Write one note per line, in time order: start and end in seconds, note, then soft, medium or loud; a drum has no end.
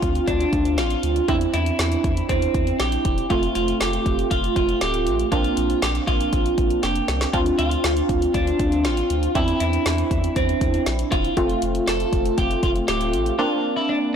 0.00 0.20 D2 medium
0.00 1.25 C4 medium
0.00 1.25 D4 medium
0.00 0.30 F4 loud
0.00 1.25 F4 medium
0.00 kick medium
0.00 closed hi-hat medium
0.15 closed hi-hat medium
0.28 0.45 D2 medium
0.28 0.80 D4 medium
0.28 kick medium
0.28 closed hi-hat medium
0.41 closed hi-hat soft
0.53 0.80 D2 medium
0.53 kick medium
0.53 closed hi-hat medium
0.65 closed hi-hat soft
0.78 0.96 A1 medium
0.78 1.28 F4 medium
0.78 snare medium
0.78 closed hi-hat medium
0.90 closed hi-hat medium
1.03 1.21 D2 medium
1.03 closed hi-hat medium
1.16 closed hi-hat soft
1.28 1.46 E2 loud
1.28 3.26 C4 medium
1.28 3.26 D4 medium
1.28 1.35 E4 medium
1.28 3.26 E4 medium
1.28 kick loud
1.28 closed hi-hat medium
1.41 closed hi-hat medium
1.54 1.71 E2 loud
1.54 2.29 E4 medium
1.54 closed hi-hat medium
1.66 closed hi-hat medium
1.79 1.97 E2 loud
1.79 snare loud
1.79 closed hi-hat medium
1.92 closed hi-hat medium
2.04 2.22 E2 medium
2.04 kick medium
2.04 closed hi-hat medium
2.17 closed hi-hat medium
2.29 2.47 E2 medium
2.29 2.76 C4 medium
2.29 kick medium
2.29 closed hi-hat medium
2.42 closed hi-hat soft
2.54 2.72 E2 medium
2.54 kick medium
2.54 closed hi-hat medium
2.67 closed hi-hat soft
2.80 2.97 A#1 medium
2.80 3.30 G4 medium
2.80 snare medium
2.80 closed hi-hat medium
2.92 closed hi-hat soft
3.05 3.23 E1 medium
3.05 kick medium
3.05 closed hi-hat medium
3.18 closed hi-hat soft
3.30 3.48 F1 loud
3.30 5.28 A3 medium
3.30 5.28 C4 medium
3.30 3.54 F4 loud
3.30 5.28 F4 medium
3.30 kick loud
3.30 closed hi-hat medium
3.43 closed hi-hat medium
3.55 3.73 F1 medium
3.55 3.80 F4 medium
3.55 closed hi-hat medium
3.68 closed hi-hat medium
3.80 3.98 F1 loud
3.80 4.30 G4 medium
3.80 snare loud
3.80 closed hi-hat medium
3.93 closed hi-hat soft
4.06 4.24 F1 loud
4.06 kick medium
4.06 closed hi-hat medium
4.19 closed hi-hat medium
4.31 4.49 F1 medium
4.31 4.55 F4 medium
4.31 kick medium
4.31 closed hi-hat medium
4.44 closed hi-hat soft
4.56 4.74 F1 medium
4.56 4.80 F4 medium
4.56 kick loud
4.56 closed hi-hat medium
4.69 closed hi-hat soft
4.81 5.08 D1 medium
4.81 5.31 G4 medium
4.81 snare medium
4.81 closed hi-hat medium
4.94 closed hi-hat medium
5.07 5.24 A1 medium
5.07 closed hi-hat medium
5.19 closed hi-hat soft
5.32 5.50 A#1 loud
5.32 7.30 A#3 medium
5.32 7.30 C4 medium
5.32 7.30 D4 medium
5.32 5.82 F4 medium
5.32 kick loud
5.32 closed hi-hat medium
5.44 closed hi-hat medium
5.57 5.75 A#1 medium
5.57 closed hi-hat medium
5.70 closed hi-hat soft
5.82 6.00 A#1 loud
5.82 5.89 G4 medium
5.82 snare loud
5.82 closed hi-hat medium
5.95 closed hi-hat soft
6.07 6.25 A#1 medium
6.07 6.83 F4 medium
6.07 kick medium
6.07 closed hi-hat medium
6.21 closed hi-hat medium
6.33 6.50 A#1 medium
6.33 kick medium
6.33 closed hi-hat medium
6.46 closed hi-hat soft
6.58 6.76 A#1 loud
6.58 kick medium
6.58 closed hi-hat medium
6.70 closed hi-hat soft
6.83 7.01 F1 medium
6.83 7.33 G4 medium
6.83 snare medium
6.83 closed hi-hat medium
6.96 closed hi-hat soft
7.08 7.26 C2 medium
7.08 snare medium
7.08 closed hi-hat medium
7.21 snare medium
7.21 closed hi-hat soft
7.33 7.51 D2 loud
7.33 9.31 C4 medium
7.33 9.31 D4 medium
7.33 7.40 F4 medium
7.33 9.31 F4 medium
7.33 kick loud
7.33 closed hi-hat medium
7.46 closed hi-hat medium
7.59 7.77 D2 loud
7.59 8.37 F4 medium
7.59 closed hi-hat medium
7.71 closed hi-hat soft
7.84 8.02 D2 loud
7.84 snare loud
7.84 closed hi-hat medium
7.97 closed hi-hat soft
8.09 8.27 D2 medium
8.09 kick medium
8.09 closed hi-hat medium
8.22 closed hi-hat medium
8.34 8.52 D2 loud
8.34 8.86 D4 medium
8.34 kick medium
8.34 closed hi-hat medium
8.47 closed hi-hat soft
8.59 8.86 D2 medium
8.59 kick medium
8.59 closed hi-hat medium
8.72 closed hi-hat soft
8.85 9.03 A1 medium
8.85 9.32 F4 medium
8.85 snare medium
8.85 closed hi-hat medium
8.97 closed hi-hat medium
9.10 9.28 D2 medium
9.10 closed hi-hat medium
9.23 closed hi-hat soft
9.35 9.53 E2 medium
9.35 11.33 C4 medium
9.35 11.33 D4 medium
9.35 9.59 E4 medium
9.35 11.33 E4 medium
9.35 kick loud
9.35 closed hi-hat medium
9.48 closed hi-hat medium
9.60 9.78 E2 medium
9.60 10.36 E4 medium
9.60 closed hi-hat medium
9.73 closed hi-hat medium
9.86 10.03 E2 loud
9.86 snare loud
9.86 closed hi-hat medium
9.98 closed hi-hat soft
10.11 10.29 E2 medium
10.11 kick medium
10.11 closed hi-hat medium
10.24 closed hi-hat medium
10.36 10.54 E2 loud
10.36 10.83 C4 medium
10.36 kick medium
10.36 closed hi-hat medium
10.49 closed hi-hat soft
10.61 10.79 E2 medium
10.61 kick medium
10.61 closed hi-hat medium
10.74 closed hi-hat soft
10.86 11.04 A#1 loud
10.86 snare medium
10.86 closed hi-hat medium
10.99 closed hi-hat medium
11.12 11.29 E1 medium
11.12 11.59 F4 loud
11.12 kick medium
11.12 closed hi-hat medium
11.25 closed hi-hat soft
11.37 11.55 F1 loud
11.37 13.35 A3 medium
11.37 13.35 C4 medium
11.37 13.35 F4 medium
11.37 kick loud
11.37 closed hi-hat medium
11.50 closed hi-hat medium
11.62 11.80 F1 medium
11.62 closed hi-hat medium
11.75 closed hi-hat soft
11.87 12.05 F1 loud
11.87 12.38 A4 medium
11.87 snare loud
11.87 closed hi-hat medium
12.00 closed hi-hat soft
12.13 12.30 F1 loud
12.13 kick medium
12.13 closed hi-hat medium
12.26 closed hi-hat medium
12.38 12.55 F1 medium
12.38 12.63 G4 medium
12.38 kick medium
12.38 closed hi-hat medium
12.51 closed hi-hat soft
12.63 12.81 F1 medium
12.63 12.70 F4 medium
12.63 kick medium
12.63 closed hi-hat medium
12.76 closed hi-hat soft
12.88 13.15 D1 loud
12.88 13.35 G4 medium
12.88 snare loud
12.88 closed hi-hat medium
13.01 closed hi-hat medium
13.13 13.31 A1 medium
13.13 closed hi-hat medium
13.26 closed hi-hat soft
13.39 14.16 A#3 medium
13.39 14.16 C4 medium
13.39 14.16 D4 medium
13.39 13.74 F4 medium
13.76 13.89 E4 medium
13.89 13.96 D4 medium